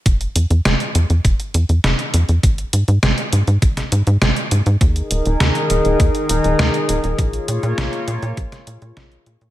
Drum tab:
HH |xxxxxxxxxxxxxxxx|xxxxxxxxxxxxxxxx|xxxxxxxxxxxxxxxx|xxxxxxxxxxxxxxxx|
SD |----o-------o---|----o----o--o---|----o-------o---|----o----o--o---|
BD |o-------o-------|o-------o-------|o-------o-------|o-------o-------|